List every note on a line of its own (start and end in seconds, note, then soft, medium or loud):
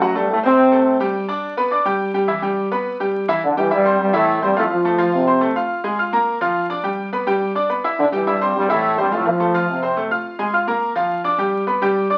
0.00 0.16 F#2 medium
0.00 0.16 F#3 loud
0.00 0.13 F#3 medium
0.00 0.13 F#4 medium
0.00 0.13 F#5 medium
0.15 0.30 G2 medium
0.15 0.30 G3 medium
0.15 0.39 A3 medium
0.15 0.39 A4 medium
0.15 0.39 A5 medium
0.31 0.37 A2 medium
0.31 0.37 A3 medium
0.43 0.98 C3 medium
0.43 0.67 C4 medium
0.43 0.97 C4 loud
0.43 0.67 C5 medium
0.43 0.67 C6 medium
0.72 0.95 A3 medium
0.72 0.95 A4 medium
0.72 0.96 A5 medium
1.00 1.24 G3 loud
1.00 1.24 G4 medium
1.00 1.24 G5 medium
1.28 1.52 D4 medium
1.28 1.52 D5 medium
1.28 1.52 D6 medium
1.57 1.69 B3 medium
1.57 1.69 B4 medium
1.57 1.69 B5 medium
1.71 1.83 D4 medium
1.71 1.83 D5 medium
1.71 1.83 D6 medium
1.85 2.09 G3 medium
1.85 2.09 G4 medium
1.85 2.09 G5 medium
2.14 2.26 G3 medium
2.14 2.26 G4 medium
2.14 2.26 G5 medium
2.28 2.40 E3 medium
2.28 2.40 E4 medium
2.28 2.40 E5 medium
2.42 2.66 G3 medium
2.42 2.66 G4 medium
2.42 2.66 G5 medium
2.72 2.95 B3 medium
2.72 2.95 B4 medium
2.72 2.95 B5 medium
3.00 3.23 G3 medium
3.00 3.23 G4 medium
3.00 3.24 G5 medium
3.28 3.40 E3 medium
3.28 3.40 E4 medium
3.28 3.40 E5 medium
3.44 3.57 D3 medium
3.44 3.56 D4 medium
3.57 3.72 E3 medium
3.57 3.68 G3 medium
3.57 3.72 E4 medium
3.57 3.69 G4 medium
3.57 3.69 G5 medium
3.71 3.98 G2 medium
3.71 3.98 G3 loud
3.71 3.82 E4 medium
3.71 3.83 E5 medium
3.71 3.83 E6 medium
3.85 4.09 C4 medium
3.85 4.09 C5 medium
3.85 4.09 C6 medium
4.00 4.13 G2 medium
4.00 4.13 G3 loud
4.13 4.41 A2 medium
4.13 4.36 E3 medium
4.13 4.40 A3 loud
4.13 4.37 E4 medium
4.13 4.37 E5 medium
4.42 4.56 G2 medium
4.42 4.55 G3 loud
4.42 4.54 C4 medium
4.42 4.54 C5 medium
4.42 4.54 C6 medium
4.56 4.64 A2 medium
4.56 4.80 F3 medium
4.56 4.63 A3 loud
4.56 4.80 F4 medium
4.56 4.80 F5 medium
4.71 5.10 F3 medium
4.71 5.10 F4 medium
4.85 4.96 A3 medium
4.85 4.97 A4 medium
4.85 4.97 A5 medium
4.98 5.22 F3 loud
4.98 5.22 F4 medium
4.98 5.22 F5 medium
5.14 5.53 C3 medium
5.14 5.53 C4 medium
5.27 5.39 C4 medium
5.27 5.39 C5 medium
5.27 5.39 C6 medium
5.41 5.53 A3 medium
5.41 5.53 A4 medium
5.41 5.53 A5 medium
5.56 5.79 F4 medium
5.56 5.79 F5 medium
5.56 5.79 F6 medium
5.84 5.96 G#3 medium
5.84 5.96 G#4 medium
5.84 5.96 G#5 medium
5.99 6.10 F4 medium
5.99 6.10 F5 medium
5.99 6.10 F6 medium
6.13 6.36 A#3 medium
6.13 6.36 A#4 medium
6.13 6.36 A#5 medium
6.41 6.64 F3 medium
6.41 6.64 F4 medium
6.41 6.65 F5 medium
6.70 6.81 D4 medium
6.70 6.81 D5 medium
6.70 6.82 D6 medium
6.83 7.07 G3 medium
6.83 7.07 G4 medium
6.83 7.07 G5 medium
7.13 7.24 B3 medium
7.13 7.24 B4 medium
7.13 7.24 B5 medium
7.27 7.50 G3 medium
7.27 7.50 G4 medium
7.27 7.50 G5 medium
7.55 7.67 D4 medium
7.55 7.67 D5 medium
7.55 7.67 D6 medium
7.69 7.81 B3 medium
7.69 7.81 B4 medium
7.69 7.81 B5 medium
7.84 8.07 E4 medium
7.84 8.07 E5 medium
7.84 8.08 E6 medium
7.99 8.05 D3 medium
7.99 8.05 D4 medium
8.12 8.26 E3 medium
8.12 8.24 G3 medium
8.12 8.26 E4 medium
8.12 8.24 G4 medium
8.12 8.24 G5 medium
8.27 8.53 G2 medium
8.27 8.53 G3 medium
8.27 8.38 E4 medium
8.27 8.38 E5 medium
8.27 8.38 E6 medium
8.41 8.64 C4 medium
8.41 8.64 C5 medium
8.41 8.64 C6 medium
8.56 8.69 G2 medium
8.56 8.68 G3 loud
8.69 8.98 A2 medium
8.69 8.92 E3 medium
8.69 8.98 A3 loud
8.69 8.93 E4 medium
8.69 8.93 E5 medium
8.98 9.11 G2 medium
8.98 9.11 G3 loud
8.98 9.09 C4 medium
8.98 9.09 C5 medium
8.98 9.10 C6 medium
9.12 9.27 A2 medium
9.12 9.35 F3 medium
9.12 9.26 A3 loud
9.12 9.35 F4 medium
9.12 9.35 F5 medium
9.27 9.69 F3 medium
9.27 9.69 F4 medium
9.40 9.51 A3 medium
9.40 9.52 A4 medium
9.40 9.52 A5 medium
9.54 9.77 F3 medium
9.54 9.78 F4 loud
9.54 9.78 F5 medium
9.69 10.08 C3 medium
9.69 10.08 C4 medium
9.82 9.94 C4 medium
9.82 9.94 C5 medium
9.82 9.94 C6 medium
9.97 10.08 A3 medium
9.97 10.08 A4 medium
9.97 10.09 A5 medium
10.11 10.34 F4 medium
10.11 10.34 F5 medium
10.11 10.34 F6 medium
10.39 10.51 G#3 medium
10.39 10.51 G#4 medium
10.39 10.51 G#5 medium
10.53 10.65 F4 medium
10.53 10.65 F5 medium
10.53 10.65 F6 medium
10.67 10.91 A#3 medium
10.67 10.91 A#4 medium
10.67 10.91 A#5 medium
10.96 11.19 F3 medium
10.96 11.19 F4 medium
10.96 11.19 F5 medium
11.24 11.36 D4 medium
11.24 11.36 D5 medium
11.24 11.36 D6 medium
11.38 11.62 G3 medium
11.38 11.62 G4 medium
11.38 11.62 G5 medium
11.67 11.79 B3 medium
11.67 11.79 B4 medium
11.67 11.79 B5 medium
11.82 12.05 G3 medium
11.82 12.05 G4 medium
11.82 12.05 G5 loud
12.10 12.18 D4 medium
12.10 12.18 D5 medium
12.10 12.18 D6 medium